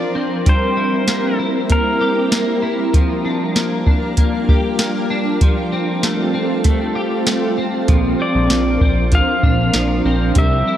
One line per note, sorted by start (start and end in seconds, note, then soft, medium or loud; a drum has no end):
0.00 0.45 F3 medium
0.00 0.46 F3 soft
0.00 0.15 C4 soft
0.00 2.90 C4 medium
0.00 0.44 D4 medium
0.00 0.53 D4 medium
0.00 5.38 A#4 medium
0.00 0.49 D5 medium
0.15 1.08 C4 medium
0.46 2.93 G3 medium
0.46 2.92 G3 medium
0.46 2.92 E4 medium
0.46 1.37 C5 medium
0.46 kick loud
0.46 closed hi-hat medium
0.77 1.38 E4 soft
1.08 1.69 A#3 medium
1.08 snare medium
1.08 closed hi-hat medium
1.39 2.61 E4 soft
1.70 2.31 A#3 medium
1.70 2.29 A#4 medium
1.70 kick medium
1.70 closed hi-hat medium
2.01 4.48 G4 medium
2.32 3.55 A#3 medium
2.32 snare loud
2.32 closed hi-hat medium
2.62 3.00 E4 soft
2.93 5.41 F3 medium
2.93 7.85 G3 medium
2.93 5.39 D4 medium
2.93 5.39 F4 medium
2.93 kick loud
2.93 closed hi-hat medium
3.25 3.85 D4 soft
3.55 4.17 A#3 medium
3.55 snare medium
3.55 closed hi-hat medium
3.87 5.09 D4 soft
3.87 kick medium
4.17 4.79 A#3 medium
4.17 kick medium
4.17 closed hi-hat medium
4.49 6.06 G4 medium
4.49 kick medium
4.79 5.48 A#3 medium
4.79 snare loud
4.79 closed hi-hat medium
5.10 5.48 D4 medium
5.41 7.89 F3 medium
5.41 10.32 C4 medium
5.41 7.86 F4 medium
5.41 7.86 A4 medium
5.41 kick loud
5.41 closed hi-hat medium
5.72 6.34 C4 soft
6.03 6.63 A3 medium
6.03 snare medium
6.03 closed hi-hat medium
6.34 7.57 C4 soft
6.64 7.26 A3 medium
6.64 kick medium
6.64 closed hi-hat medium
6.95 7.95 G4 medium
7.27 7.95 A3 soft
7.27 snare loud
7.27 closed hi-hat medium
7.58 8.20 C4 medium
7.88 8.16 A#1 medium
7.88 10.34 F3 medium
7.88 8.49 F3 medium
7.88 10.34 D4 medium
7.88 10.77 A#4 medium
7.88 kick loud
7.88 closed hi-hat medium
8.20 8.81 C4 soft
8.20 9.16 D5 medium
8.35 8.49 A#1 medium
8.50 8.78 A#1 medium
8.50 9.11 F3 medium
8.50 snare medium
8.50 closed hi-hat medium
8.81 9.22 A#1 medium
8.81 10.05 C4 soft
8.81 kick medium
9.12 9.74 F3 medium
9.12 10.38 F5 medium
9.12 kick medium
9.12 closed hi-hat medium
9.43 9.71 A#1 medium
9.43 10.43 D4 medium
9.43 kick medium
9.73 10.02 A#1 medium
9.73 10.36 F3 medium
9.73 snare loud
9.73 closed hi-hat medium
10.05 10.33 A#1 medium
10.05 10.77 C4 medium
10.35 10.63 C2 medium
10.35 10.77 G3 medium
10.35 10.77 C4 medium
10.35 10.77 E4 medium
10.35 10.77 E5 medium
10.35 kick loud
10.35 closed hi-hat medium
10.67 10.77 E4 soft